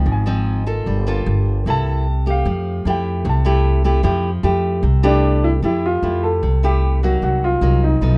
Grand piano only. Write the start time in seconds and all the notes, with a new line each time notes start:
0.12 G#5
1.70 A5
2.30 F5
2.90 G5
3.29 A5
5.05 D4
5.44 E4
5.65 E4
5.86 F4
6.23 A4
6.65 G4
7.03 F#4
7.24 F#4
7.44 F4
7.84 D#4